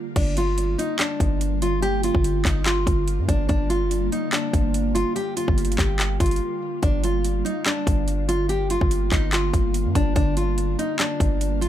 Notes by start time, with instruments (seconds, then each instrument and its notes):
Already playing: ambient pad D3 G3 A#3 F4
0.16 808-style bass G1, ambient pad D3 G3 A#3 F4, nylon-string guitar D4, kick, closed hi-hat, crash
0.37 nylon-string guitar F4, closed hi-hat
0.58 closed hi-hat
0.78 nylon-string guitar D#4, closed hi-hat
0.99 nylon-string guitar D4, cross-stick, clap, closed hi-hat
1.20 808-style bass G1, kick, closed hi-hat
1.41 closed hi-hat
1.62 nylon-string guitar F4, closed hi-hat
1.82 nylon-string guitar G4, closed hi-hat
2.03 nylon-string guitar F4, closed hi-hat
2.15 808-style bass G1, kick
2.24 closed hi-hat
2.45 808-style bass G1, nylon-string guitar D#4, kick, clap, closed hi-hat
2.66 nylon-string guitar F4, cross-stick, clap, closed hi-hat
2.87 808-style bass G1, kick, closed hi-hat
3.08 closed hi-hat
3.19 808-style bass G2
3.29 808-style bass G1, nylon-string guitar D4, kick, closed hi-hat
3.49 808-style bass G1, nylon-string guitar D4, kick, closed hi-hat
3.70 nylon-string guitar F4, closed hi-hat
3.91 closed hi-hat
4.12 nylon-string guitar D#4, closed hi-hat
4.33 nylon-string guitar D4, cross-stick, clap, closed hi-hat
4.53 808-style bass G1, kick, closed hi-hat
4.74 closed hi-hat
4.95 nylon-string guitar F4, closed hi-hat
5.16 nylon-string guitar G4, closed hi-hat
5.37 nylon-string guitar F4, closed hi-hat
5.48 808-style bass G1, kick
5.58 closed hi-hat
5.65 closed hi-hat
5.72 closed hi-hat
5.78 808-style bass G1, nylon-string guitar G4, kick, clap, closed hi-hat
5.99 cross-stick, clap, closed hi-hat
6.20 808-style bass G1, nylon-string guitar F4, kick, closed hi-hat
6.26 closed hi-hat
6.31 closed hi-hat
6.36 closed hi-hat
6.82 808-style bass G1, ambient pad D3 A#3, nylon-string guitar D4, kick, closed hi-hat
7.04 nylon-string guitar F4, closed hi-hat
7.24 closed hi-hat
7.45 nylon-string guitar D#4, closed hi-hat
7.66 nylon-string guitar D4, cross-stick, clap, closed hi-hat
7.87 808-style bass G1, kick, closed hi-hat
8.08 closed hi-hat
8.29 nylon-string guitar F4, closed hi-hat
8.49 nylon-string guitar G4, closed hi-hat
8.70 nylon-string guitar F4, closed hi-hat
8.81 808-style bass G1, kick
8.91 closed hi-hat
9.12 808-style bass G1, nylon-string guitar D#4, kick, clap, closed hi-hat
9.33 nylon-string guitar F4, cross-stick, clap, closed hi-hat
9.53 808-style bass G1, kick, closed hi-hat
9.74 closed hi-hat
9.85 808-style bass G2
9.95 808-style bass G1, nylon-string guitar D4, kick, closed hi-hat
10.16 808-style bass G1, ambient pad G3 F4, nylon-string guitar D4, kick, closed hi-hat
10.37 nylon-string guitar F4, closed hi-hat
10.58 closed hi-hat
10.79 nylon-string guitar D#4, closed hi-hat
10.99 nylon-string guitar D4, cross-stick, clap, closed hi-hat
11.20 808-style bass G1, kick, closed hi-hat
11.41 closed hi-hat
11.61 nylon-string guitar F4, closed hi-hat